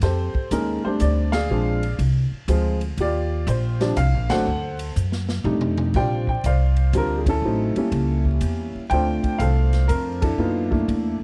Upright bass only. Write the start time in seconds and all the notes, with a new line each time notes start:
0.02 F2
0.34 muted upright bass stroke
0.51 D#2
0.85 muted upright bass stroke
1.01 D2
1.50 A#1
1.99 C2
2.31 muted upright bass stroke
2.48 D2
2.97 D#2
3.47 A#1
3.97 C2
4.13 A#1
4.30 G1
4.47 D2
4.96 F#2
5.44 F2
5.94 A#1
6.44 C2
6.93 D2
7.42 A1
7.76 muted upright bass stroke
7.92 C#2
8.41 E2
8.75 muted upright bass stroke
8.91 D2
9.23 muted upright bass stroke
9.39 C2
9.89 F2
10.38 F#2
10.88 E2
11.20 muted upright bass stroke